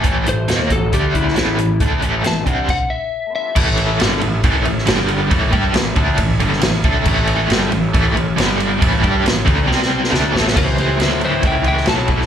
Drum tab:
CC |----------------|--------x-------|x---------------|----------------|
RD |----------------|----------------|--x-x-x-x-x-x-x-|x-x-x-x-x-x-x-x-|
HH |x-x-x-x-x-x-x-x-|x-x-x-x---------|----------------|----------------|
SD |----o------oo---|----o-----------|----o------oo---|----o------oo---|
BD |o-----o-o-o-----|o-----o-o-------|o-------o-------|o-o---o-o-----o-|

CC |x---------------|----------------|x---------------|
RD |--x-x-x-x-x-x-x-|x-x-x-x---------|--x-x-x-x-x-x-x-|
HH |----------------|----------------|----------------|
SD |----o-------o---|----o---oo-oo-oo|----o------oo--o|
BD |o-------o-------|o-o---o---------|o-------o-----o-|